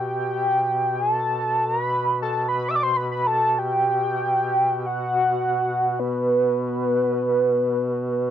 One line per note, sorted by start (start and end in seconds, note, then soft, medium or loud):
0.00 8.30 B2 soft
0.00 0.96 G5 medium
0.94 1.12 G#5 medium
1.12 1.66 A5 medium
1.65 1.83 A#5 medium
1.83 2.20 B5 medium
2.22 2.46 A5 medium
2.48 2.70 B5 medium
2.68 2.72 D6 medium
2.68 2.77 E6 medium
2.75 2.84 D6 medium
2.83 2.98 C6 medium
2.97 3.09 B5 medium
3.11 3.28 B5 medium
3.27 3.60 A5 medium
3.59 4.88 G5 loud
4.86 6.01 F#5 loud
5.99 8.30 B4 medium